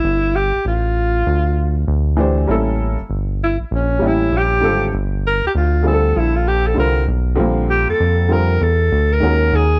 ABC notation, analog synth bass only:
X:1
M:4/4
L:1/16
Q:"Swing 16ths" 1/4=98
K:Aphr
V:1 name="Analog synth bass" clef=bass
G,,,3 A,,, A,,,4 D,,4 D,,4 | A,,,3 G,,, G,,,3 B,,, B,,,2 A,,,2 B,,,2 ^G,,,2 | G,,,3 D,, D,,4 B,,,4 C,,2 =B,,,2 | B,,,3 F,, F,,4 E,,2 D,,2 _E,,2 E,,2 |]